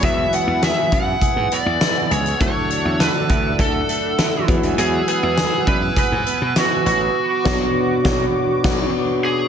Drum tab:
CC |----------------|----------------|----------------|--x-------x-----|
HH |x-x-x-x-x-x-x-xx|x-x-x-x-x-x-x-xx|x-x-x-x-x-x-x-x-|----------------|
SD |----o-------o---|----o-------o---|----o-------o---|--o---o---o-----|
BD |o-----o-o-------|o-----o-o-----o-|------o-o-------|--o---o---o-----|